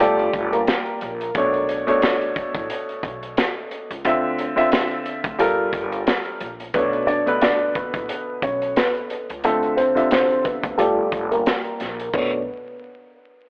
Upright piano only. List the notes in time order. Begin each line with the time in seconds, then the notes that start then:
0.00 A3 A4
0.52 A#3 A#4
6.74 B3 B4
7.07 D4 D5
7.42 D4 D5
7.75 B3 B4
8.43 C#4 C#5
8.77 B3 B4
9.45 A3 A4
9.77 C4 C5
10.12 C4 C5
10.44 B3 B4
10.78 A3 A4
11.31 A#3 A#4
12.14 B3